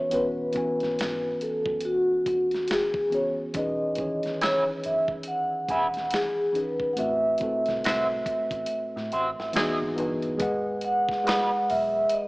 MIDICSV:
0, 0, Header, 1, 7, 480
1, 0, Start_track
1, 0, Key_signature, 4, "major"
1, 0, Tempo, 857143
1, 67, Time_signature, 4, 2, 24, 8
1, 6876, End_track
2, 0, Start_track
2, 0, Title_t, "Vibraphone"
2, 0, Program_c, 0, 11
2, 0, Note_on_c, 0, 73, 85
2, 75, Note_on_c, 0, 71, 86
2, 76, Note_off_c, 0, 73, 0
2, 798, Note_on_c, 0, 69, 78
2, 813, Note_off_c, 0, 71, 0
2, 1036, Note_on_c, 0, 66, 71
2, 1039, Note_off_c, 0, 69, 0
2, 1516, Note_on_c, 0, 68, 87
2, 1526, Note_off_c, 0, 66, 0
2, 1759, Note_off_c, 0, 68, 0
2, 1761, Note_on_c, 0, 73, 75
2, 1866, Note_off_c, 0, 73, 0
2, 1999, Note_on_c, 0, 75, 81
2, 2479, Note_on_c, 0, 73, 82
2, 2487, Note_off_c, 0, 75, 0
2, 2585, Note_off_c, 0, 73, 0
2, 2721, Note_on_c, 0, 76, 82
2, 2826, Note_off_c, 0, 76, 0
2, 2956, Note_on_c, 0, 78, 84
2, 3439, Note_on_c, 0, 68, 92
2, 3446, Note_off_c, 0, 78, 0
2, 3679, Note_on_c, 0, 71, 71
2, 3680, Note_off_c, 0, 68, 0
2, 3867, Note_off_c, 0, 71, 0
2, 3882, Note_on_c, 0, 78, 61
2, 3910, Note_off_c, 0, 78, 0
2, 3913, Note_on_c, 0, 76, 82
2, 5328, Note_off_c, 0, 76, 0
2, 6074, Note_on_c, 0, 78, 104
2, 6554, Note_on_c, 0, 76, 84
2, 6564, Note_off_c, 0, 78, 0
2, 6797, Note_on_c, 0, 75, 75
2, 6798, Note_off_c, 0, 76, 0
2, 6876, Note_off_c, 0, 75, 0
2, 6876, End_track
3, 0, Start_track
3, 0, Title_t, "Clean electric guitar"
3, 0, Program_c, 1, 27
3, 2473, Note_on_c, 1, 68, 78
3, 2476, Note_on_c, 1, 71, 81
3, 2479, Note_on_c, 1, 76, 81
3, 2591, Note_off_c, 1, 68, 0
3, 2593, Note_off_c, 1, 71, 0
3, 2594, Note_off_c, 1, 76, 0
3, 3192, Note_on_c, 1, 68, 58
3, 3197, Note_on_c, 1, 71, 73
3, 3201, Note_on_c, 1, 76, 71
3, 3284, Note_off_c, 1, 68, 0
3, 3287, Note_off_c, 1, 71, 0
3, 3289, Note_off_c, 1, 76, 0
3, 4398, Note_on_c, 1, 66, 81
3, 4402, Note_on_c, 1, 72, 82
3, 4406, Note_on_c, 1, 76, 84
3, 4514, Note_off_c, 1, 66, 0
3, 4516, Note_off_c, 1, 72, 0
3, 4518, Note_off_c, 1, 76, 0
3, 5110, Note_on_c, 1, 66, 55
3, 5114, Note_on_c, 1, 72, 61
3, 5117, Note_on_c, 1, 76, 65
3, 5204, Note_off_c, 1, 66, 0
3, 5206, Note_off_c, 1, 72, 0
3, 5207, Note_off_c, 1, 76, 0
3, 5353, Note_on_c, 1, 64, 79
3, 5357, Note_on_c, 1, 68, 90
3, 5360, Note_on_c, 1, 75, 87
3, 5471, Note_off_c, 1, 64, 0
3, 5473, Note_off_c, 1, 68, 0
3, 5475, Note_off_c, 1, 75, 0
3, 6310, Note_on_c, 1, 66, 75
3, 6315, Note_on_c, 1, 71, 79
3, 6319, Note_on_c, 1, 75, 86
3, 6430, Note_off_c, 1, 66, 0
3, 6433, Note_off_c, 1, 71, 0
3, 6435, Note_off_c, 1, 75, 0
3, 6876, End_track
4, 0, Start_track
4, 0, Title_t, "Tine electric piano"
4, 0, Program_c, 2, 4
4, 0, Control_c, 2, 64, 127
4, 0, Note_on_c, 2, 52, 55
4, 0, Note_on_c, 2, 59, 57
4, 0, Note_on_c, 2, 61, 52
4, 0, Note_on_c, 2, 66, 54
4, 0, Note_on_c, 2, 71, 59
4, 55, Note_off_c, 2, 52, 0
4, 55, Note_on_c, 2, 52, 62
4, 63, Note_off_c, 2, 59, 0
4, 63, Note_on_c, 2, 59, 64
4, 69, Note_off_c, 2, 61, 0
4, 69, Note_on_c, 2, 61, 63
4, 73, Note_off_c, 2, 66, 0
4, 73, Note_on_c, 2, 66, 62
4, 81, Note_off_c, 2, 71, 0
4, 81, Note_on_c, 2, 71, 75
4, 253, Note_off_c, 2, 52, 0
4, 257, Note_off_c, 2, 59, 0
4, 260, Note_off_c, 2, 61, 0
4, 262, Note_off_c, 2, 66, 0
4, 266, Note_off_c, 2, 71, 0
4, 298, Note_on_c, 2, 52, 66
4, 306, Note_on_c, 2, 59, 62
4, 311, Note_on_c, 2, 61, 59
4, 315, Note_on_c, 2, 66, 65
4, 321, Note_on_c, 2, 80, 70
4, 1026, Note_off_c, 2, 52, 0
4, 1030, Note_off_c, 2, 59, 0
4, 1033, Note_off_c, 2, 61, 0
4, 1035, Note_off_c, 2, 66, 0
4, 1038, Note_off_c, 2, 80, 0
4, 1736, Note_on_c, 2, 52, 60
4, 1744, Note_on_c, 2, 59, 55
4, 1749, Note_on_c, 2, 61, 53
4, 1753, Note_on_c, 2, 66, 56
4, 1761, Note_on_c, 2, 68, 60
4, 1934, Note_off_c, 2, 52, 0
4, 1938, Note_off_c, 2, 59, 0
4, 1940, Note_off_c, 2, 61, 0
4, 1942, Note_off_c, 2, 66, 0
4, 1946, Note_off_c, 2, 68, 0
4, 1981, Note_on_c, 2, 52, 66
4, 1985, Note_on_c, 2, 61, 66
4, 1992, Note_on_c, 2, 63, 60
4, 1993, Control_c, 2, 64, 0
4, 1999, Note_on_c, 2, 68, 63
4, 2006, Note_on_c, 2, 71, 69
4, 2103, Control_c, 2, 64, 127
4, 2176, Note_off_c, 2, 52, 0
4, 2178, Note_off_c, 2, 61, 0
4, 2182, Note_off_c, 2, 63, 0
4, 2185, Note_off_c, 2, 68, 0
4, 2189, Note_off_c, 2, 71, 0
4, 2221, Note_on_c, 2, 52, 68
4, 2226, Note_on_c, 2, 61, 57
4, 2234, Note_on_c, 2, 51, 59
4, 2240, Note_on_c, 2, 68, 67
4, 2244, Note_on_c, 2, 73, 71
4, 2948, Note_off_c, 2, 52, 0
4, 2951, Note_off_c, 2, 61, 0
4, 2954, Note_off_c, 2, 51, 0
4, 2958, Note_off_c, 2, 68, 0
4, 2960, Note_off_c, 2, 73, 0
4, 3656, Note_on_c, 2, 52, 60
4, 3662, Note_on_c, 2, 61, 61
4, 3667, Note_on_c, 2, 63, 61
4, 3674, Note_on_c, 2, 68, 60
4, 3680, Note_on_c, 2, 71, 70
4, 3854, Note_off_c, 2, 52, 0
4, 3856, Note_off_c, 2, 61, 0
4, 3859, Note_off_c, 2, 63, 0
4, 3863, Note_off_c, 2, 68, 0
4, 3866, Note_off_c, 2, 71, 0
4, 3893, Note_on_c, 2, 45, 69
4, 3899, Note_on_c, 2, 57, 64
4, 3906, Note_on_c, 2, 60, 64
4, 3910, Note_on_c, 2, 66, 63
4, 3912, Control_c, 2, 64, 0
4, 3919, Note_on_c, 2, 71, 74
4, 4024, Control_c, 2, 64, 127
4, 4092, Note_off_c, 2, 45, 0
4, 4095, Note_off_c, 2, 57, 0
4, 4099, Note_off_c, 2, 60, 0
4, 4101, Note_off_c, 2, 66, 0
4, 4105, Note_off_c, 2, 71, 0
4, 4139, Note_on_c, 2, 45, 65
4, 4146, Note_on_c, 2, 57, 60
4, 4151, Note_on_c, 2, 60, 62
4, 4155, Note_on_c, 2, 66, 57
4, 4163, Note_on_c, 2, 69, 73
4, 4867, Note_off_c, 2, 45, 0
4, 4870, Note_off_c, 2, 57, 0
4, 4873, Note_off_c, 2, 60, 0
4, 4875, Note_off_c, 2, 66, 0
4, 4879, Note_off_c, 2, 69, 0
4, 5337, Note_on_c, 2, 52, 87
4, 5344, Note_on_c, 2, 59, 77
4, 5350, Note_on_c, 2, 63, 88
4, 5353, Control_c, 2, 64, 0
4, 5356, Note_on_c, 2, 66, 84
4, 5361, Note_on_c, 2, 68, 98
4, 5457, Control_c, 2, 64, 127
4, 5543, Note_off_c, 2, 52, 0
4, 5547, Note_off_c, 2, 59, 0
4, 5549, Note_off_c, 2, 63, 0
4, 5553, Note_off_c, 2, 66, 0
4, 5555, Note_off_c, 2, 68, 0
4, 5573, Note_on_c, 2, 52, 69
4, 5579, Note_on_c, 2, 59, 65
4, 5586, Note_on_c, 2, 63, 68
4, 5593, Note_on_c, 2, 66, 58
4, 5596, Note_on_c, 2, 71, 82
4, 5772, Note_off_c, 2, 52, 0
4, 5775, Note_off_c, 2, 59, 0
4, 5779, Note_off_c, 2, 63, 0
4, 5782, Note_off_c, 2, 66, 0
4, 5784, Note_off_c, 2, 71, 0
4, 5810, Note_on_c, 2, 56, 82
4, 5816, Note_on_c, 2, 68, 72
4, 5823, Note_on_c, 2, 71, 74
4, 5828, Note_on_c, 2, 75, 74
4, 5834, Control_c, 2, 64, 0
4, 5835, Note_on_c, 2, 78, 90
4, 5939, Control_c, 2, 64, 127
4, 6203, Note_off_c, 2, 56, 0
4, 6206, Note_off_c, 2, 68, 0
4, 6209, Note_off_c, 2, 71, 0
4, 6212, Note_off_c, 2, 75, 0
4, 6216, Note_off_c, 2, 78, 0
4, 6295, Note_on_c, 2, 56, 68
4, 6300, Note_on_c, 2, 68, 65
4, 6307, Note_on_c, 2, 71, 60
4, 6321, Note_on_c, 2, 78, 80
4, 6876, Note_off_c, 2, 56, 0
4, 6876, Note_off_c, 2, 68, 0
4, 6876, Note_off_c, 2, 71, 0
4, 6876, Note_off_c, 2, 78, 0
4, 6876, End_track
5, 0, Start_track
5, 0, Title_t, "Fingered electric bass"
5, 0, Program_c, 3, 33
5, 83, Note_on_c, 3, 28, 93
5, 274, Note_off_c, 3, 28, 0
5, 463, Note_on_c, 3, 32, 73
5, 537, Note_off_c, 3, 32, 0
5, 562, Note_on_c, 3, 32, 80
5, 753, Note_off_c, 3, 32, 0
5, 934, Note_on_c, 3, 30, 81
5, 1012, Note_off_c, 3, 30, 0
5, 1272, Note_on_c, 3, 28, 86
5, 1585, Note_off_c, 3, 28, 0
5, 1993, Note_on_c, 3, 28, 93
5, 2385, Note_off_c, 3, 28, 0
5, 2720, Note_on_c, 3, 30, 70
5, 2912, Note_off_c, 3, 30, 0
5, 3190, Note_on_c, 3, 28, 87
5, 3504, Note_off_c, 3, 28, 0
5, 3921, Note_on_c, 3, 33, 91
5, 4113, Note_off_c, 3, 33, 0
5, 4303, Note_on_c, 3, 36, 82
5, 4377, Note_off_c, 3, 36, 0
5, 4399, Note_on_c, 3, 36, 85
5, 4591, Note_off_c, 3, 36, 0
5, 4771, Note_on_c, 3, 33, 79
5, 4850, Note_off_c, 3, 33, 0
5, 5021, Note_on_c, 3, 45, 79
5, 5096, Note_off_c, 3, 45, 0
5, 5118, Note_on_c, 3, 33, 91
5, 5231, Note_off_c, 3, 33, 0
5, 5259, Note_on_c, 3, 33, 76
5, 5335, Note_off_c, 3, 33, 0
5, 5355, Note_on_c, 3, 28, 91
5, 5469, Note_off_c, 3, 28, 0
5, 5499, Note_on_c, 3, 32, 74
5, 5575, Note_off_c, 3, 32, 0
5, 5597, Note_on_c, 3, 31, 83
5, 5790, Note_off_c, 3, 31, 0
5, 5832, Note_on_c, 3, 32, 85
5, 6224, Note_off_c, 3, 32, 0
5, 6557, Note_on_c, 3, 35, 83
5, 6750, Note_off_c, 3, 35, 0
5, 6876, End_track
6, 0, Start_track
6, 0, Title_t, "Muted fingered electric bass strokes"
6, 1185, Note_on_c, 9, 29, 44
6, 1241, Note_off_c, 9, 29, 0
6, 6876, End_track
7, 0, Start_track
7, 0, Title_t, "Drums"
7, 63, Note_on_c, 9, 42, 85
7, 119, Note_off_c, 9, 42, 0
7, 295, Note_on_c, 9, 42, 56
7, 312, Note_on_c, 9, 36, 86
7, 351, Note_off_c, 9, 42, 0
7, 368, Note_off_c, 9, 36, 0
7, 450, Note_on_c, 9, 42, 32
7, 465, Note_on_c, 9, 38, 29
7, 506, Note_off_c, 9, 42, 0
7, 521, Note_off_c, 9, 38, 0
7, 553, Note_on_c, 9, 42, 73
7, 564, Note_on_c, 9, 38, 95
7, 609, Note_off_c, 9, 42, 0
7, 620, Note_off_c, 9, 38, 0
7, 790, Note_on_c, 9, 42, 66
7, 846, Note_off_c, 9, 42, 0
7, 927, Note_on_c, 9, 36, 83
7, 983, Note_off_c, 9, 36, 0
7, 1011, Note_on_c, 9, 42, 74
7, 1067, Note_off_c, 9, 42, 0
7, 1266, Note_on_c, 9, 36, 82
7, 1268, Note_on_c, 9, 42, 57
7, 1322, Note_off_c, 9, 36, 0
7, 1324, Note_off_c, 9, 42, 0
7, 1407, Note_on_c, 9, 42, 31
7, 1425, Note_on_c, 9, 38, 36
7, 1463, Note_off_c, 9, 42, 0
7, 1481, Note_off_c, 9, 38, 0
7, 1499, Note_on_c, 9, 42, 72
7, 1517, Note_on_c, 9, 38, 105
7, 1555, Note_off_c, 9, 42, 0
7, 1573, Note_off_c, 9, 38, 0
7, 1646, Note_on_c, 9, 36, 99
7, 1702, Note_off_c, 9, 36, 0
7, 1749, Note_on_c, 9, 42, 51
7, 1805, Note_off_c, 9, 42, 0
7, 1982, Note_on_c, 9, 42, 84
7, 1986, Note_on_c, 9, 36, 111
7, 2038, Note_off_c, 9, 42, 0
7, 2042, Note_off_c, 9, 36, 0
7, 2214, Note_on_c, 9, 42, 60
7, 2231, Note_on_c, 9, 36, 88
7, 2270, Note_off_c, 9, 42, 0
7, 2287, Note_off_c, 9, 36, 0
7, 2369, Note_on_c, 9, 42, 35
7, 2385, Note_on_c, 9, 38, 30
7, 2425, Note_off_c, 9, 42, 0
7, 2441, Note_off_c, 9, 38, 0
7, 2472, Note_on_c, 9, 42, 73
7, 2483, Note_on_c, 9, 38, 98
7, 2528, Note_off_c, 9, 42, 0
7, 2539, Note_off_c, 9, 38, 0
7, 2708, Note_on_c, 9, 42, 66
7, 2764, Note_off_c, 9, 42, 0
7, 2846, Note_on_c, 9, 36, 79
7, 2902, Note_off_c, 9, 36, 0
7, 2931, Note_on_c, 9, 42, 71
7, 2987, Note_off_c, 9, 42, 0
7, 3184, Note_on_c, 9, 36, 85
7, 3186, Note_on_c, 9, 42, 65
7, 3240, Note_off_c, 9, 36, 0
7, 3242, Note_off_c, 9, 42, 0
7, 3326, Note_on_c, 9, 42, 33
7, 3343, Note_on_c, 9, 38, 34
7, 3382, Note_off_c, 9, 42, 0
7, 3399, Note_off_c, 9, 38, 0
7, 3419, Note_on_c, 9, 42, 80
7, 3437, Note_on_c, 9, 38, 95
7, 3475, Note_off_c, 9, 42, 0
7, 3493, Note_off_c, 9, 38, 0
7, 3669, Note_on_c, 9, 42, 52
7, 3725, Note_off_c, 9, 42, 0
7, 3806, Note_on_c, 9, 36, 74
7, 3862, Note_off_c, 9, 36, 0
7, 3902, Note_on_c, 9, 42, 86
7, 3958, Note_off_c, 9, 42, 0
7, 4132, Note_on_c, 9, 42, 63
7, 4149, Note_on_c, 9, 36, 88
7, 4188, Note_off_c, 9, 42, 0
7, 4205, Note_off_c, 9, 36, 0
7, 4288, Note_on_c, 9, 42, 35
7, 4304, Note_on_c, 9, 38, 30
7, 4344, Note_off_c, 9, 42, 0
7, 4360, Note_off_c, 9, 38, 0
7, 4392, Note_on_c, 9, 42, 77
7, 4403, Note_on_c, 9, 38, 114
7, 4448, Note_off_c, 9, 42, 0
7, 4459, Note_off_c, 9, 38, 0
7, 4625, Note_on_c, 9, 36, 95
7, 4628, Note_on_c, 9, 42, 63
7, 4681, Note_off_c, 9, 36, 0
7, 4684, Note_off_c, 9, 42, 0
7, 4765, Note_on_c, 9, 36, 84
7, 4768, Note_on_c, 9, 42, 36
7, 4821, Note_off_c, 9, 36, 0
7, 4824, Note_off_c, 9, 42, 0
7, 4851, Note_on_c, 9, 42, 74
7, 4907, Note_off_c, 9, 42, 0
7, 5024, Note_on_c, 9, 38, 29
7, 5080, Note_off_c, 9, 38, 0
7, 5106, Note_on_c, 9, 42, 61
7, 5162, Note_off_c, 9, 42, 0
7, 5263, Note_on_c, 9, 38, 34
7, 5319, Note_off_c, 9, 38, 0
7, 5338, Note_on_c, 9, 42, 78
7, 5357, Note_on_c, 9, 38, 106
7, 5394, Note_off_c, 9, 42, 0
7, 5413, Note_off_c, 9, 38, 0
7, 5588, Note_on_c, 9, 42, 51
7, 5644, Note_off_c, 9, 42, 0
7, 5726, Note_on_c, 9, 42, 32
7, 5782, Note_off_c, 9, 42, 0
7, 5822, Note_on_c, 9, 42, 92
7, 5824, Note_on_c, 9, 36, 117
7, 5878, Note_off_c, 9, 42, 0
7, 5880, Note_off_c, 9, 36, 0
7, 6055, Note_on_c, 9, 42, 58
7, 6111, Note_off_c, 9, 42, 0
7, 6208, Note_on_c, 9, 36, 84
7, 6224, Note_on_c, 9, 38, 33
7, 6264, Note_off_c, 9, 36, 0
7, 6280, Note_off_c, 9, 38, 0
7, 6311, Note_on_c, 9, 42, 80
7, 6322, Note_on_c, 9, 38, 107
7, 6367, Note_off_c, 9, 42, 0
7, 6378, Note_off_c, 9, 38, 0
7, 6550, Note_on_c, 9, 46, 48
7, 6606, Note_off_c, 9, 46, 0
7, 6773, Note_on_c, 9, 42, 82
7, 6829, Note_off_c, 9, 42, 0
7, 6876, End_track
0, 0, End_of_file